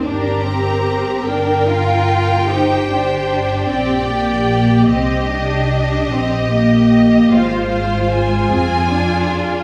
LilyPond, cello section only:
\new Staff \with { instrumentName = "Cello section" } { \time 12/8 \key g \phrygian \tempo 4. = 50 d'8 c'4 d'8 f'4 ees'8 d'4 c'8 bes4 | c'8 d'4 c'8 bes4 aes4. c'8 d'4 | }